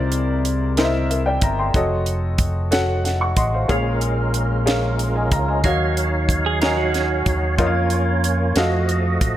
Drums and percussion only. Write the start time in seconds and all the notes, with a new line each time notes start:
0.12 closed hi-hat
0.45 closed hi-hat
0.77 snare, closed hi-hat
1.11 closed hi-hat
1.42 kick, closed hi-hat
1.74 kick, closed hi-hat
2.06 closed hi-hat
2.38 kick, closed hi-hat
2.72 snare, closed hi-hat
3.05 snare, closed hi-hat
3.37 kick, closed hi-hat
3.69 kick, closed hi-hat
4.01 closed hi-hat
4.34 closed hi-hat
4.67 snare, closed hi-hat
4.99 closed hi-hat
5.32 kick, closed hi-hat
5.64 kick, closed hi-hat
5.97 closed hi-hat
6.29 kick, closed hi-hat
6.62 snare, closed hi-hat
6.94 snare, closed hi-hat
7.26 kick, closed hi-hat
7.58 kick, closed hi-hat
7.90 closed hi-hat
8.24 closed hi-hat
8.56 snare, closed hi-hat
8.89 closed hi-hat
9.21 kick, closed hi-hat